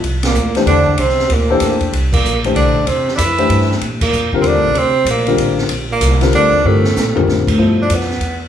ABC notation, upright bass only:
X:1
M:3/4
L:1/8
Q:"Swing" 1/4=191
K:Cmix
V:1 name="Upright bass" clef=bass
C,,2 D,,2 E,,2 | C,,2 D,,2 E,,2 | C,,2 B,,,2 (3C,, B,,, G,,, | E,,2 F,,2 G,,2 |
B,,2 F,,2 (3E,, D,, B,,, | D,,2 B,,,2 A,,,2 | B,,,2 C,,2 D,,2 | G,,2 B,,2 A,,2 |
[K:Gmix] G,,2 F,,2 E,,2 |]